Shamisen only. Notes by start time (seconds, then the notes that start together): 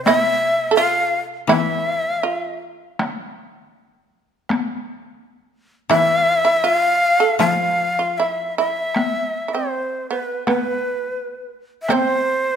0.07 E4
0.71 A4
0.77 F4
1.49 E4
2.23 F4
5.91 E4
6.45 E4
6.64 F4
7.20 A4
7.40 F4
7.99 F4
8.20 E4
8.58 E4
9.48 E4
9.55 C4
10.11 B3
10.47 B3
11.90 C4